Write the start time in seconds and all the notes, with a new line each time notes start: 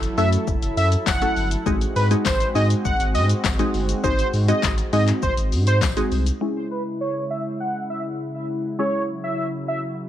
Already playing: F#3 E4 A4
0.03 closed hi-hat, shaker
0.18 F#2 A3 C#4 E4 F#4 A4 E5, open hi-hat, shaker
0.33 closed hi-hat, shaker
0.47 F#1, kick, shaker
0.62 F#1, closed hi-hat, shaker
0.77 F#2 E5, open hi-hat, shaker
0.92 closed hi-hat, shaker
1.06 F#1 F#5, kick, snare, clap, tambourine, shaker
1.22 A3 C#4 E4 F#4 A4, closed hi-hat, shaker
1.36 G1, open hi-hat, shaker
1.51 closed hi-hat, shaker
1.66 G#1 G#3 C4 D#4 F#4 G#4, kick, shaker
1.81 closed hi-hat, shaker
1.96 G#2 B4, open hi-hat, shaker
2.11 G#3 C4 D#4 F#4 G#4, closed hi-hat, shaker
2.25 G#1 C5, kick, snare, clap, tambourine, shaker
2.40 closed hi-hat, shaker
2.55 G#2 G#3 C4 D#4 F#4 G#4 D#5, open hi-hat, shaker
2.70 closed hi-hat, shaker
2.85 G#1 F#5, kick, shaker
3.00 G#1, closed hi-hat, shaker
3.15 G#2 D#5, open hi-hat, shaker
3.29 closed hi-hat, shaker
3.44 G#1, kick, snare, clap, tambourine, shaker
3.59 G#3 C4 D#4 F#4 G#4, closed hi-hat, shaker
3.74 G1, open hi-hat, shaker
3.89 closed hi-hat, shaker
4.04 G#1 G#3 C4 D#4 F#4 G#4 C5, kick, shaker
4.19 closed hi-hat, shaker
4.33 G#2, open hi-hat, shaker
4.48 G#3 C4 D#4 F#4 G#4 D#5, closed hi-hat, shaker
4.63 G#1, kick, snare, clap, tambourine, shaker
4.78 closed hi-hat, shaker
4.93 G#2 G#3 C4 D#4 F#4 G#4 D#5, open hi-hat, shaker
5.08 clap, closed hi-hat, shaker
5.22 G#1 C5, kick, shaker
5.37 G#1, closed hi-hat, shaker
5.52 G#2, open hi-hat, shaker
5.67 C5, closed hi-hat, shaker
5.81 G#1, kick, snare, clap, tambourine, shaker
5.97 G#3 C4 D#4 F#4 G#4, closed hi-hat, shaker
6.12 C2, open hi-hat, shaker
6.26 closed hi-hat, shaker
6.41 C#3 G#3 C#4 E4 G#4
6.71 B4
7.01 C#5
7.30 E5
7.60 F#5
7.90 E5
8.79 F#3 G#3 C#4 E4 G#4 C#5
9.24 E5
9.68 E5